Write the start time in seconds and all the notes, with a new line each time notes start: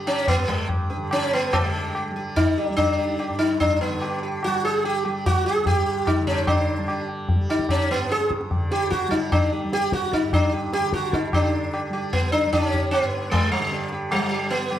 Already playing: G2 D3 G3
0.07 C#4, tabla na
0.28 B3, tabla na, tabla ge
0.37 G2
0.48 G#3, tabla ge
0.69 tabla na, tabla ge
0.90 G4, tabla te
0.97 D3
1.11 C#4, tabla na
1.33 B3
1.52 D3 G#3 G4, tabla na, tabla ge
1.75 G4
1.95 G4, tabla na
2.11 G3
2.16 G4
2.36 D#4, tabla tin, tabla ge
2.58 D4 G4
2.70 G3
2.77 D4, tabla na, tabla ge
2.98 G4
3.19 G4, tabla na
3.30 G2
3.39 D#4
3.60 D4, tabla tin, tabla ge
3.81 B3
3.88 D3
4.02 G4, tabla na
4.23 G4, tabla na
4.43 G3 F#4, tabla na
4.65 G#4
4.85 G4, tabla tin
5.05 G3 G4, tabla na
5.26 F#4, tabla na, tabla ge
5.46 G#4
5.63 G2 G4, tabla tin, tabla ge
6.07 D#4, tabla na, tabla ge
6.20 D3
6.27 C#4, tabla ge
6.47 D4, tabla na, tabla ge
6.79 G3
6.88 G4, tabla na
7.09 tabla na
7.29 tabla tin, tabla ge
7.36 G3
7.50 D#4, tabla na
7.59 tabla ke
7.69 C#4, tabla na, tabla ge
7.91 G2 B3
8.11 G#4, tabla te
8.21 tabla te
8.31 tabla ke
8.41 tabla te
8.50 D3, tabla tin, tabla ge
8.71 G4, tabla te
8.90 F#4, tabla ke
9.08 G3 D#4
9.12 tabla ke
9.32 D4, tabla na, tabla ge
9.52 G4
9.64 G3
9.73 G4, tabla te
9.92 F#4, tabla ke
10.13 D#4, tabla ke
10.22 G2
10.33 D4, tabla na, tabla ge
10.53 G4
10.73 G4, tabla te
10.79 D3
10.93 F#4, tabla ke
11.13 D#4, tabla ke
11.33 D3 D4 G4, tabla na, tabla ge
11.73 G4, tabla na
11.90 G3 G4, tabla na
12.13 B3, tabla tin, tabla ge
12.32 D4
12.46 G3
12.53 D4, tabla na, tabla ge
12.64 C#4
12.73 G4, tabla ge
12.91 B3, tabla na
13.03 G2
13.31 G#3, tabla tin, tabla ge
13.52 G3
13.60 D3
13.72 G4, tabla te
13.92 G4, tabla te
14.11 G3, tabla na
14.31 G4
14.50 B3, tabla tin
14.71 G3 G4, tabla na